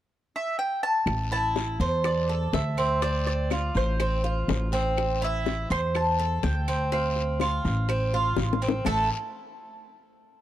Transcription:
0.36 mandolin E5
0.59 mandolin G5
0.83 mandolin A5
1.06 upright bass A1, high bongo, long guiro, claves
1.32 cuban tres E4, mandolin A5
1.56 high bongo, short guiro
1.80 upright bass E2, cuban tres C5, short guiro
2.04 mandolin D5, high bongo, long guiro, claves
2.29 cuban tres A4
2.53 upright bass D2, mandolin E5, high bongo, low bongo, short guiro
2.77 cuban tres C4, short guiro, claves
3.02 cuban tres C4, mandolin D5, high bongo, long guiro
3.27 mandolin D5, high bongo
3.50 cuban tres F4, high bongo, short guiro, claves
3.75 upright bass A1, mandolin C5, high bongo, short guiro
4.00 cuban tres C4, high bongo, long guiro, claves
4.24 cuban tres F4, high bongo
4.48 upright bass A1, high bongo, low bongo, short guiro
4.72 cuban tres C4, short guiro
4.97 high bongo, long guiro, claves
5.22 cuban tres E4, mandolin E5
5.46 high bongo, short guiro
5.70 upright bass E2, cuban tres C5, mandolin C6, short guiro
5.94 mandolin A5, high bongo, long guiro, claves
6.19 cuban tres A4
6.43 upright bass D2, mandolin G5, high bongo, low bongo, short guiro
6.68 cuban tres C4, short guiro, claves
6.92 cuban tres C4, mandolin F5, high bongo, long guiro
7.16 high bongo
7.40 cuban tres F4, high bongo, short guiro, claves
7.65 upright bass A1, high bongo, short guiro
7.89 cuban tres C4, high bongo, long guiro, claves
8.13 cuban tres F4, high bongo
8.37 upright bass A1, high bongo, short guiro
8.53 low bongo
8.62 cuban tres C4, short guiro
8.69 low bongo
8.85 upright bass A1, cuban tres A3 E4 A4, mandolin A5, low bongo, long guiro, claves

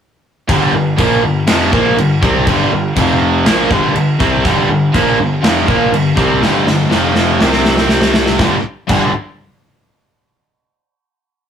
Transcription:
0.48 picked electric bass G1, overdriven electric guitar G2 D3 G3, kick, crash
0.73 picked electric bass G1, overdriven electric guitar G2 D3
0.98 picked electric bass A#1, overdriven electric guitar A#2 F3 A#3, kick, crash
1.23 picked electric bass G1, overdriven electric guitar G2 D3
1.47 picked electric bass F1, overdriven electric guitar F2 C3 F3, snare, crash
1.71 picked electric bass A#1, overdriven electric guitar A#2 F3 A#3, kick
1.96 picked electric bass G1, overdriven electric guitar G2 D3, crash
2.22 picked electric bass C2, overdriven electric guitar C3 G3 C4, kick
2.46 picked electric bass G1, overdriven electric guitar G2 D3 G3, kick, crash
2.71 picked electric bass G1, overdriven electric guitar G2 D3
2.96 picked electric bass F1, overdriven electric guitar F2 C3 F3, kick, crash
3.45 picked electric bass A#1, overdriven electric guitar A#2 F3 A#3, snare, crash
3.71 picked electric bass G1, overdriven electric guitar G2 D3 G3, kick
3.94 picked electric bass G1, overdriven electric guitar G2 D3, crash
4.19 picked electric bass C2, overdriven electric guitar C3 G3 C4, kick, snare
4.43 picked electric bass G1, overdriven electric guitar G2 D3 G3, kick, crash
4.69 picked electric bass G1, overdriven electric guitar G2 D3
4.94 picked electric bass A#1, overdriven electric guitar A#2 F3 A#3, kick, crash
5.18 picked electric bass G1, overdriven electric guitar G2 D3
5.43 picked electric bass F1, overdriven electric guitar F2 C3 F3, snare, crash
5.66 picked electric bass A#1, overdriven electric guitar A#2 F3 A#3, kick
5.91 picked electric bass G1, overdriven electric guitar G2 D3, crash
6.15 picked electric bass C2, overdriven electric guitar C3 G3 C4, kick, snare
6.40 picked electric bass G1, overdriven electric guitar G2 D3 G3, snare
6.65 picked electric bass G1, overdriven electric guitar G2 D3, snare
6.90 picked electric bass F1, overdriven electric guitar F2 C3 F3, snare
7.15 snare
7.39 picked electric bass C2, overdriven electric guitar C3 G3 C4, snare
7.53 snare
7.65 snare
7.77 snare
7.89 snare
8.02 snare
8.14 snare
8.26 snare
8.38 picked electric bass G1, overdriven electric guitar G2 D3 G3, kick, snare
8.88 picked electric bass G1, overdriven electric guitar G2 D3 G3, kick, crash

